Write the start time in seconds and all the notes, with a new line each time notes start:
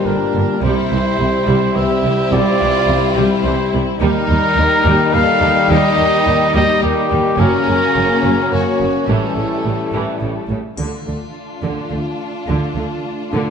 Already playing: A#2 G3 A#3 D4 G4
0.06 G1 G2 D3 D4 A#4
0.34 G1 G2 D3
0.62 C2 C3 G3 C4 E4 G4 C5
0.91 C2 E3
1.19 C2 C3
1.47 C2 G3
1.75 C2 E3 G4 E5
2.04 C2 C3
2.32 C2 G3 F4 D5
2.60 C2 E3
2.88 C2 C3
3.16 C2 G3
3.44 C2 E3 E4 C5
3.73 C2 C3
4.00 D#2 D#3 G3 A#3 D#4 G4 A#4
4.29 D#2 D#3
4.57 D#2 D#3
4.85 D#2 G3
5.14 D#2 D#3 A4 F5
5.42 D#2 D#3
5.70 D#2 G3 G4 D#5
5.98 D#2 D#3
6.26 D#2 D#3
6.54 D#2 G3 G4 D#5
6.82 D#2 D#3 A#3 G4
7.11 D#2 D#3
7.38 F#1 F#2 C#3 F#3 A#3 C#4 F#4 A#4
7.68 F#1 F#2 C#3
7.96 F#1 F#2 C#3
8.23 F#1 F#2 F#3
8.52 F#1 F#2 C#3 F#4 C#5
8.80 F#1 F#2 C#3
9.07 A1 A2 E3 G3 A3 C#4 E4 A4
9.36 A1 A2 C#3
9.64 A1 A2 C#3
9.93 A1 A2 E3
10.21 A1 A2 C#3
10.49 A1 A2 C#3
10.78 D2 D3 A3 D4 F4, triangle
11.07 D2 D3 A3
11.63 D2 D3
11.91 D2 D3 A3
12.48 D2 D3
12.76 D2 D3 A3
13.32 D2 D3